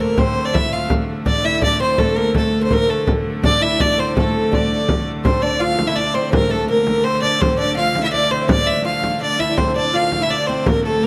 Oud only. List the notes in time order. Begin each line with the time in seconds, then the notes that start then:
0.00 A#3
0.18 C4
0.54 E4
0.72 F4
1.26 D4
1.44 E4
1.62 D4
1.80 C4
1.98 A3
2.16 A#3
2.35 A3
2.61 C4
2.71 A#3
2.89 A3
3.44 D4
3.61 E4
3.80 D4
3.98 C4
4.17 A3
4.52 D4
5.25 C4
5.43 D4
5.61 F4
5.88 E4
5.96 D4
6.15 C4
6.32 A#3
6.50 A3
6.68 A#3
6.86 A#3
7.04 C4
7.22 D4
7.40 C4
7.59 D4
7.77 F4
8.03 E4
8.12 D4
8.31 C4
8.48 D4
8.85 F4
9.21 D4
9.39 E4
9.58 C4
9.76 D4
9.94 F4
10.21 E4
10.30 D4
10.49 C4
10.67 A#3
10.86 A3
11.03 A#3